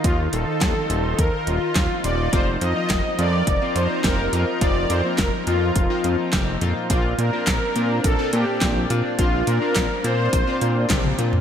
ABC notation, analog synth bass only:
X:1
M:4/4
L:1/8
Q:1/4=105
K:Fmix
V:1 name="Analog synth bass" clef=bass
E,, E,,, E,, E,,, E,, E,,, E,, E,,, | F,,, F,, F,,, F,, F,,, F,, F,,, F,, | F,,, F,, F,,, F,, F,,, F,, F,,, F,, | B,,, B,, B,,, B,, B,,, B,, B,,, B,, |
B,,, B,, B,,, B,, B,,, B,, B,,, B,, |]